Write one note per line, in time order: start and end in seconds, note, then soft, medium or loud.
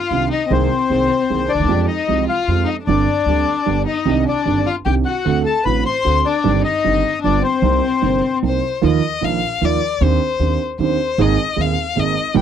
0.00 0.28 F4 medium
0.00 0.29 F5 medium
0.11 0.27 C2 soft
0.11 0.28 C2 soft
0.11 0.28 C3 soft
0.11 0.28 D#3 soft
0.11 0.28 C4 soft
0.11 0.28 D4 soft
0.11 0.28 G4 soft
0.30 0.48 D#4 medium
0.30 0.52 D#5 medium
0.49 0.67 C2 medium
0.49 0.67 C3 medium
0.49 0.67 D#3 medium
0.49 0.67 A#3 soft
0.49 1.44 C4 medium
0.49 0.67 C4 soft
0.49 0.67 G#4 medium
0.49 1.52 C5 medium
0.90 1.06 C2 soft
0.90 1.07 C2 soft
0.90 1.07 C3 soft
0.90 1.06 D#3 soft
0.90 1.07 A#3 soft
0.90 1.07 C4 soft
0.90 1.07 G#4 soft
1.30 1.46 C2 soft
1.30 1.46 C3 soft
1.30 1.46 D#3 soft
1.30 1.46 A#3 soft
1.30 1.46 C4 soft
1.30 1.46 G#4 soft
1.49 1.85 D4 medium
1.49 1.86 D5 medium
1.55 1.59 D2 soft
1.60 1.64 D#2 soft
1.60 1.65 D#2 soft
1.64 1.69 E2 medium
1.64 1.85 F3 medium
1.69 1.85 F2 medium
1.69 1.86 F2 medium
1.69 1.85 G#3 soft
1.69 1.85 C4 soft
1.69 1.85 G4 medium
1.88 2.25 D#4 medium
1.88 2.25 D#5 medium
2.08 2.25 C2 soft
2.08 2.25 C2 medium
2.08 2.25 C3 soft
2.08 2.25 F3 soft
2.08 2.25 G#3 soft
2.08 2.25 C4 soft
2.08 2.25 G4 soft
2.26 2.64 F4 medium
2.26 2.69 F5 medium
2.48 2.64 F2 soft
2.48 2.65 F2 soft
2.48 2.65 F3 soft
2.48 2.65 G#3 soft
2.48 2.65 C4 soft
2.48 2.66 G4 soft
2.65 2.74 D#4 medium
2.65 2.77 D#5 medium
2.83 3.04 G1 medium
2.83 3.81 D4 medium
2.83 3.82 D5 medium
2.88 3.05 G1 medium
2.88 3.05 G2 medium
2.88 3.05 D3 medium
2.88 3.04 G3 soft
2.88 3.04 C4 medium
2.88 3.05 G4 medium
3.26 3.43 D2 soft
3.26 3.44 D2 soft
3.26 3.44 D3 soft
3.26 3.44 G3 soft
3.26 3.44 C4 soft
3.26 3.44 G4 soft
3.66 3.83 G1 soft
3.66 3.84 G1 soft
3.66 3.83 G2 soft
3.66 3.83 D3 soft
3.66 3.83 G3 soft
3.66 3.83 B3 soft
3.66 3.83 G4 soft
3.87 4.24 D#4 medium
3.87 4.24 D#5 medium
4.05 4.23 C2 medium
4.05 4.23 C3 medium
4.05 4.23 D#3 medium
4.05 4.23 C4 soft
4.05 4.23 D4 medium
4.05 4.23 G4 medium
4.26 4.63 D4 medium
4.26 4.69 D5 medium
4.45 4.63 G1 soft
4.45 4.63 G2 soft
4.45 4.63 D#3 soft
4.45 4.63 C4 soft
4.45 4.63 D4 soft
4.45 4.63 G4 soft
4.67 4.76 F4 medium
4.67 4.75 F5 medium
4.85 5.03 C2 soft
4.85 5.03 C3 soft
4.85 5.03 D#3 soft
4.85 5.03 C4 soft
4.85 5.03 D4 soft
4.85 4.94 G4 medium
4.85 5.03 G4 soft
4.85 4.95 G5 medium
5.05 5.43 F#4 medium
5.05 5.43 F#5 medium
5.25 5.42 D2 medium
5.25 5.43 D2 medium
5.25 5.42 D3 medium
5.25 5.42 A3 medium
5.25 5.42 C4 medium
5.25 5.42 F#4 medium
5.44 5.63 A4 medium
5.44 5.64 A5 medium
5.64 5.82 A1 soft
5.64 5.82 A2 soft
5.64 5.82 D3 soft
5.64 5.82 A3 soft
5.64 5.83 C4 soft
5.64 5.83 F#4 soft
5.64 5.83 B4 medium
5.64 5.84 B5 medium
5.86 6.23 C5 medium
5.86 6.27 C6 medium
6.05 6.22 D2 soft
6.05 6.22 D3 soft
6.05 6.22 A3 soft
6.05 6.22 C4 soft
6.05 6.22 F#4 soft
6.26 6.62 D4 medium
6.26 6.62 D5 medium
6.44 6.61 G1 medium
6.44 6.61 G2 medium
6.44 6.61 D#3 medium
6.44 6.61 G3 soft
6.44 6.61 C4 soft
6.44 6.61 G4 medium
6.64 7.19 D#4 medium
6.64 7.20 D#5 medium
6.84 7.01 G1 soft
6.84 7.01 G1 medium
6.84 7.01 G2 soft
6.84 7.01 D#3 soft
6.84 7.01 G3 soft
6.84 7.01 C4 soft
6.84 7.01 G4 soft
7.21 7.40 G1 soft
7.21 7.41 G1 soft
7.21 7.41 G2 soft
7.21 7.41 D3 soft
7.21 7.41 G3 soft
7.21 7.41 B3 soft
7.21 7.41 D4 medium
7.21 7.41 F4 soft
7.21 7.43 D5 medium
7.43 8.38 C4 medium
7.43 8.39 C5 medium
7.62 7.79 C2 medium
7.62 7.80 C3 medium
7.62 7.79 G3 medium
7.62 7.80 A#3 soft
7.62 7.80 D#4 medium
8.02 8.19 G1 soft
8.02 8.19 G2 soft
8.02 8.19 C3 soft
8.02 8.19 G3 soft
8.02 8.19 A#3 soft
8.02 8.19 D#4 soft
8.42 8.59 C2 soft
8.42 8.59 C3 soft
8.42 8.59 G3 soft
8.42 8.59 A#3 soft
8.42 8.59 D#4 soft
8.42 8.81 C5 medium
8.82 8.99 D#2 medium
8.82 8.99 D#3 medium
8.82 8.99 F3 medium
8.82 8.99 A#3 medium
8.82 8.99 F4 medium
8.86 9.26 D#5 medium
9.21 9.39 A#1 soft
9.21 9.39 A#1 medium
9.21 9.38 A#2 soft
9.21 9.38 D#3 soft
9.21 9.38 F3 soft
9.21 9.39 A#3 soft
9.21 9.39 F4 soft
9.21 9.67 F5 medium
9.61 9.78 D#2 medium
9.61 9.78 D#2 soft
9.61 9.78 D#3 soft
9.61 9.78 F3 soft
9.61 9.79 A#3 soft
9.61 9.79 F4 soft
9.61 10.05 D5 medium
10.01 10.18 D#2 medium
10.01 10.18 D#3 medium
10.01 10.18 C4 medium
10.01 10.18 D4 medium
10.01 10.18 G4 medium
10.01 10.61 C5 medium
10.40 10.57 D#2 soft
10.40 10.57 D#2 medium
10.40 10.57 D#3 soft
10.40 10.57 C4 soft
10.40 10.57 D4 soft
10.40 10.57 G4 soft
10.79 10.96 D#2 medium
10.79 10.96 D#3 soft
10.79 10.96 C4 soft
10.79 10.97 D4 soft
10.79 10.97 G4 soft
10.79 11.23 C5 medium
11.18 11.35 G#1 medium
11.18 11.35 G#2 medium
11.18 11.35 D#3 medium
11.18 11.35 A#3 medium
11.18 11.35 C4 medium
11.18 11.36 G#4 medium
11.18 11.62 D#5 medium
11.56 11.74 D#1 medium
11.56 11.74 D#2 soft
11.56 11.74 D#2 medium
11.56 11.74 D#3 soft
11.56 11.74 A#3 soft
11.56 11.74 C4 soft
11.56 11.74 G#4 soft
11.61 12.01 F5 medium
11.95 12.13 G#1 medium
11.95 12.14 G#1 medium
11.95 12.13 G#2 medium
11.95 12.13 D#3 soft
11.95 12.13 A#3 soft
11.95 12.13 C4 soft
11.95 12.14 G#4 soft
11.99 12.37 D#5 medium
12.34 12.42 A#1 medium
12.34 12.42 A#2 medium
12.34 12.42 D#3 medium
12.34 12.42 G3 medium
12.34 12.42 A#3 medium
12.34 12.42 G4 medium
12.34 12.42 G5 medium